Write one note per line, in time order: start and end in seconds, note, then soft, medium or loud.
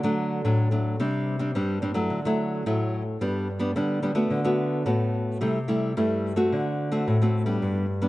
0.00 0.42 D3 medium
0.00 0.41 F#3 medium
0.04 0.41 A3 medium
0.04 0.41 D4 medium
0.44 0.97 A2 medium
0.44 0.68 F#3 medium
0.44 0.68 A3 medium
0.44 0.68 D4 medium
0.71 0.95 F#3 soft
0.71 0.95 A3 medium
0.71 0.96 D4 medium
1.00 1.53 C3 medium
1.00 1.37 G3 medium
1.00 1.37 C4 medium
1.00 1.37 D4 medium
1.39 1.50 G3 medium
1.39 1.50 C4 medium
1.39 1.50 D4 medium
1.55 2.08 G2 medium
1.55 1.78 G3 medium
1.55 1.79 C4 medium
1.55 1.79 D4 medium
1.82 1.91 G3 soft
1.82 1.91 C4 medium
1.82 1.91 D4 medium
1.94 2.19 F#3 medium
1.94 2.19 A3 medium
1.94 2.19 E4 medium
2.10 2.63 D3 medium
2.25 2.62 F#3 medium
2.25 2.62 A3 medium
2.25 2.62 E4 medium
2.66 3.18 A2 medium
2.66 3.01 F#3 medium
2.66 3.02 A3 medium
2.66 3.02 E4 medium
3.21 3.73 G2 medium
3.21 3.47 G3 medium
3.21 3.47 B3 medium
3.21 3.47 D4 medium
3.59 3.70 G3 medium
3.59 3.71 B3 medium
3.59 3.71 D4 medium
3.76 4.28 D3 medium
3.76 3.99 G3 medium
3.76 3.99 B3 medium
3.76 4.00 D4 medium
4.02 4.11 G3 medium
4.02 4.12 B3 medium
4.02 4.12 D4 medium
4.15 4.39 A3 medium
4.15 4.40 B3 medium
4.15 4.40 F#4 medium
4.30 4.83 D3 medium
4.45 4.82 A3 medium
4.45 4.82 B3 medium
4.45 4.82 F#4 medium
4.86 5.39 A2 medium
4.86 5.37 A3 medium
4.86 5.37 B3 medium
4.86 5.37 F#4 medium
5.41 5.94 C3 medium
5.41 5.58 G3 medium
5.41 5.58 A3 medium
5.41 5.58 E4 medium
5.68 5.92 G3 medium
5.68 5.92 A3 medium
5.68 5.92 E4 medium
5.97 6.50 G2 medium
5.97 6.34 G3 medium
5.97 6.34 A3 medium
5.97 6.34 E4 medium
6.36 6.88 A3 medium
6.36 6.88 C4 medium
6.36 6.89 F#4 medium
6.52 7.05 D3 medium
6.92 7.16 A3 medium
6.92 7.16 C4 medium
6.92 7.16 F#4 medium
7.08 7.60 A2 medium
7.22 7.45 A3 medium
7.22 7.45 C4 medium
7.22 7.45 F#4 medium
7.46 7.84 G3 medium
7.46 7.85 B3 medium
7.46 7.85 D4 medium
7.62 8.09 G2 medium
8.02 8.09 G3 medium
8.02 8.09 B3 medium
8.02 8.09 D4 medium